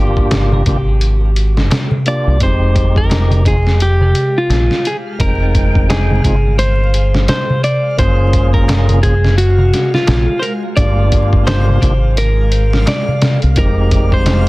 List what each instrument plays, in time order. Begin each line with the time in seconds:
Already playing: fingered electric bass G1, tonewheel organ A#3 D4 F4 G4, clean electric guitar G4
0.17 kick
0.31 snare, closed hi-hat, darbuka tek
0.52 darbuka dum
0.66 fingered electric bass G#1, tonewheel organ A#3 D4 F4 G4, kick, closed hi-hat
1.01 closed hi-hat
1.36 closed hi-hat
1.57 snare
1.71 snare, closed hi-hat, darbuka tek
1.91 darbuka dum
2.06 tonewheel organ A#3 D4 F4 G4, clean electric guitar D5, closed hi-hat
2.27 fingered electric bass C2
2.40 fingered electric bass F1, tonewheel organ G#3 C4 D#4, synth texture G#3 F5, clean electric guitar C5, kick, closed hi-hat
2.45 tonewheel organ G4
2.76 kick, closed hi-hat
2.96 clean electric guitar A#4, kick
3.10 snare, closed hi-hat, darbuka tek
3.31 closed hi-hat, darbuka dum
3.45 tonewheel organ G#3 C4 D#4 F4, clean electric guitar G#4, kick, closed hi-hat
3.67 snare
3.80 clean electric guitar G4, closed hi-hat
4.01 darbuka dum
4.15 closed hi-hat
4.38 clean electric guitar F4
4.49 fingered electric bass A#1, snare, closed hi-hat, darbuka tek
4.71 snare
4.85 clean electric guitar G#4, closed hi-hat
5.19 fingered electric bass F1, tonewheel organ G#3 C4 D#4, clean electric guitar A#4, kick, closed hi-hat
5.23 tonewheel organ G5
5.55 kick, closed hi-hat
5.75 kick
5.90 clean electric guitar G#4, snare, closed hi-hat, darbuka tek
6.11 darbuka dum
6.24 fingered electric bass G1, tonewheel organ G#3 C4 D#4 F4, kick, closed hi-hat
6.59 clean electric guitar C5, closed hi-hat
6.94 closed hi-hat
7.15 snare
7.28 clean electric guitar C5, snare, closed hi-hat, darbuka tek
7.50 darbuka dum
7.64 clean electric guitar D5, closed hi-hat
7.97 fingered electric bass F#1, tonewheel organ A#3 C#4 F4, clean electric guitar C5, kick, closed hi-hat
8.02 tonewheel organ G#4
8.33 kick, closed hi-hat
8.54 clean electric guitar A#4, kick
8.68 snare, closed hi-hat, darbuka tek
8.89 closed hi-hat, darbuka dum
9.03 tonewheel organ A#3 C#4 F4 G#4, clean electric guitar G#4, kick, closed hi-hat
9.24 snare
9.38 clean electric guitar F#4, closed hi-hat
9.58 darbuka dum
9.73 snare, closed hi-hat
9.94 clean electric guitar F4, snare
10.07 fingered electric bass A#1, snare, closed hi-hat, darbuka tek
10.39 clean electric guitar A#4 C5, closed hi-hat
10.76 fingered electric bass G1, tonewheel organ A#3 D4 F4, clean electric guitar D5, kick, closed hi-hat
10.81 tonewheel organ G4
11.12 kick, closed hi-hat
11.33 kick
11.47 clean electric guitar C5, snare, closed hi-hat, darbuka tek
11.68 darbuka dum
11.82 fingered electric bass G#1, tonewheel organ A#3 D4 F4 G4, kick, closed hi-hat
12.17 clean electric guitar A#4, closed hi-hat
12.52 closed hi-hat
12.73 snare
12.86 clean electric guitar D5, snare, closed hi-hat, darbuka tek
13.08 darbuka dum
13.22 snare, closed hi-hat
13.42 fingered electric bass C2, closed hi-hat
13.55 fingered electric bass F1, tonewheel organ G#3 C4 D#4, clean electric guitar A#4, kick, closed hi-hat
13.60 tonewheel organ G4
13.91 kick, closed hi-hat
14.12 clean electric guitar C5, kick
14.26 snare, closed hi-hat, darbuka tek